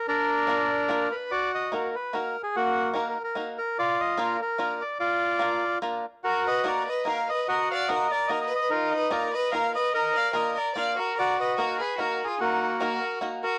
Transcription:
0.08 bandoneon D4 A#4
0.47 five-string banjo A#3 D4 F4 A#4
0.89 five-string banjo A#3 D4 F4 A#4
1.12 bandoneon B4
1.31 bandoneon F#4 D5
1.55 bandoneon D#5
1.72 five-string banjo A#3 D#4 F#4 A#4, bandoneon A#4
1.95 bandoneon B4
2.13 five-string banjo A#3 D#4 F#4 A#4, bandoneon A#4
2.43 bandoneon G#4
2.56 bandoneon A#3 F#4
2.93 five-string banjo A#3 D#4 F#4 A#4, bandoneon A#4
3.09 bandoneon A#4
3.24 bandoneon A#4
3.35 five-string banjo A#3 D#4 F#4 A#4
3.58 bandoneon A#4
3.79 bandoneon F4 D5
4.00 bandoneon D#5
4.18 five-string banjo A#3 D4 F4 A#4, bandoneon A#4
4.42 bandoneon A#4
4.58 five-string banjo A#3 D4 F4 A#4
4.81 bandoneon D5
5.00 bandoneon F4 D5
5.39 five-string banjo A#3 D4 F4 A#4
5.82 five-string banjo A#3 D4 F4 A#4
6.24 bandoneon F#4 A#4, violin F#4
6.47 violin B4, bandoneon D#5
6.64 five-string banjo A#3 D#4 F#4 A#4, violin A#4, bandoneon D5
6.88 violin B4, bandoneon D#5
7.05 five-string banjo A#3 D#4 F#4 A#4, violin A#4, bandoneon F5
7.29 violin B4, bandoneon D#5
7.48 bandoneon F#4 D#5, violin A#4
7.71 violin D5, bandoneon F5
7.88 five-string banjo A#3 D#4 F#4 A#4, bandoneon D#5
7.93 violin A#4
8.11 violin A#4, bandoneon D5
8.28 five-string banjo A#3 D#4 F#4 A#4, violin A#4, bandoneon D#5
8.41 bandoneon D#5
8.46 violin B4
8.55 bandoneon D#5
8.61 violin B4
8.70 bandoneon D#4 A#4, violin F4
8.92 bandoneon D#5
8.96 violin B4
9.10 five-string banjo A#3 D#4 F4 A#4, violin A#4, bandoneon D5
9.33 violin B4, bandoneon D#5
9.52 five-string banjo A#3 D#4 F4 A#4, violin A#4, bandoneon F5
9.75 violin B4, bandoneon D#5
9.94 bandoneon A#4 D#5, violin A#4
10.15 violin D5, bandoneon F5
10.33 five-string banjo A#3 D4 F4 A#4, violin A#4, bandoneon D#5
10.55 violin A#4, bandoneon D5
10.75 five-string banjo A#3 D4 F4 A#4, violin D5, bandoneon F5
10.97 violin F#4, bandoneon A#4
11.17 bandoneon F#4 D5, violin A#4
11.40 violin B4, bandoneon D#5
11.58 five-string banjo A#3 D#4 F#4 A#4, violin F#4, bandoneon A#4
11.80 violin G#4, bandoneon B4
11.98 five-string banjo A#3 D#4 F#4 A#4, violin F#4, bandoneon A#4
12.24 violin F4, bandoneon G#4
12.40 bandoneon A#3 F#4, violin D#4
12.80 five-string banjo A#3 D#4 F#4 A#4, violin F#4, bandoneon A#4
13.21 five-string banjo A#3 D#4 F#4 A#4
13.43 violin F#4, bandoneon A#4

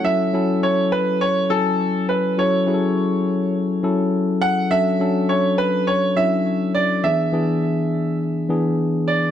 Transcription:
Already playing: tine electric piano C#5
0.04 tine electric piano F#3 C#4 E4 A4, grand piano E5
0.33 tine electric piano F#3 C#4 E4 A4
0.63 grand piano C#5
0.92 grand piano B4
1.21 grand piano C#5
1.50 tine electric piano F#3 C#4 E4 G#5, grand piano A4
2.09 grand piano B4
2.37 tine electric piano F#3 C#4 E4 A4, grand piano C#5
2.66 tine electric piano F#3 C#4 E4 G#4
2.74 tine electric piano A4
3.83 tine electric piano F#3 C#4 E4 A4
4.42 grand piano F#5
4.71 tine electric piano F#3 C#4 D4 A4, grand piano E5
5.00 tine electric piano F#3 C#4 D4 A4
5.29 grand piano C#5
5.58 grand piano B4
5.87 grand piano C#5
6.16 tine electric piano F#3 C#4 D4 E4, grand piano E5
6.75 grand piano D5
7.04 tine electric piano E3 B3 D4 G#4, grand piano E5
7.32 tine electric piano E3 B3 D4 G#4
8.49 tine electric piano E3 B3 D4 G#4
9.08 grand piano D5

